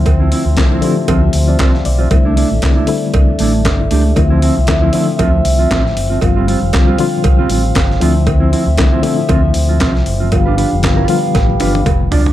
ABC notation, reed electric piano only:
X:1
M:4/4
L:1/16
Q:"Swing 16ths" 1/4=117
K:Ddor
V:1 name="Reed electric piano"
z8 z3 d e f d c- | c z8 z3 D E2 G- | G z12 z3 | z16 |
z16 | z16 |]
V:2 name="Reed electric piano"
[D,F,A,CE]2 z2 [D,F,A,CE]2 [D,F,A,CG]6 z4 | [D,G,A,CE]2 z2 [D,G,A,CE]2 [D,G,A,CE]6 z4 | [D,F,A,CE]2 z2 [D,F,A,CE]2 [D,F,A,CE]6 z4 | [D,F,G,CF]2 z2 [D,F,G,CF]2 [D,F,G,CF]6 z2 [D,F,A,CE]2- |
[D,F,A,CE]2 z2 [D,F,A,CE]2 [D,F,A,CE]6 z4 | [D,F,G,B,F]2 z2 [D,F,G,B,F]2 [D,F,G,B,F]6 z4 |]